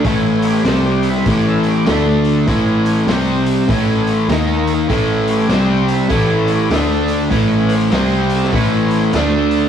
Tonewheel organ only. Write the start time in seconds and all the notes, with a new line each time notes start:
0.04 E3 A3 C#4
0.43 F#4
0.48 G4
0.65 C3 G3 C4 A4
0.86 G4
1.08 E4
1.25 E3 A3 C#4 G4
1.49 A4
1.67 G4
1.86 D3 A3 D4 E4
2.09 D4
2.45 E3 A3 C#4
3.06 C3 G3 C4
3.68 E3 A3 C#4
4.29 D#3 A#3 D#4
4.90 E3 A3 C#4
5.30 F#4
5.34 G4
5.49 C3 G3 C4 A4
5.71 G4
5.92 E4
6.12 E3 A3 C#4 G4
6.35 A4
6.55 G4
6.70 D3 A3 D4 E4
6.94 D4
7.30 E3 A3 C#4
7.68 B4 C5
7.93 C3 G3 C4
8.35 A4
8.53 E3 A3 C#4 B4
8.57 C5
9.13 D3 A3 D4
9.37 A4